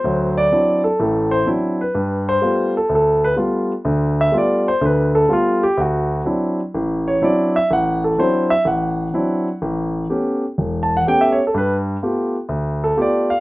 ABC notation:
X:1
M:4/4
L:1/16
Q:"Swing" 1/4=125
K:Dmix
V:1 name="Grand piano"
c2 d4 A2 A2 c2 z2 B2- | B2 c4 A2 A2 B2 z4 | z2 e2 d2 c2 B2 A2 =F2 G2 | F4 z6 ^c2 d2 e2 |
f2 A2 c2 e2 f8 | z8 z2 a f g e ^c A | B2 z8 A2 d2 =f2 |]
V:2 name="Grand piano"
[D,,F,]4 [F,CDE]2 z2 [A,,,A,,]4 [F,CDE]2 z2 | G,,4 [G,A,B,=F]2 z2 D,,4 [G,A,B,F]2 z2 | [D,,D,]4 [G,A,B,=F]2 z2 [D,,D,]4 [G,A,B,F]2 z2 | D,,4 [F,CDE]2 z2 A,,,4 [F,CDE]2 z2 |
A,,,4 [F,CDE]2 z2 A,,,4 [F,CDE]2 z2 | A,,,4 [A,B,^CG]2 z2 E,,,4 [A,B,CG]2 z2 | G,,4 [A,B,=FG]2 z2 D,,4 [A,B,FG]2 z2 |]